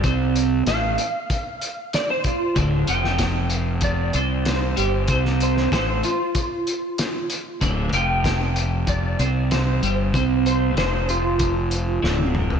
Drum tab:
HH |x-x-x-x-x-x-x-x-|x-x-x-x-x-x-x-x-|x-x-x-x-x-x-x-x-|x-x-x-x-x-x-x-x-|
SD |----o-------o---|---oo-------o---|-o-oo-------o---|----o-------o---|
T1 |----------------|----------------|----------------|----------------|
T2 |----------------|----------------|----------------|----------------|
FT |----------------|----------------|----------------|----------------|
BD |o-------o-----o-|o---o---o-------|o---o---o-------|o---o---o-------|

HH |x-x-x-x-x-x-----|
SD |----o-------o---|
T1 |-------------o--|
T2 |--------------o-|
FT |---------------o|
BD |o-------o-------|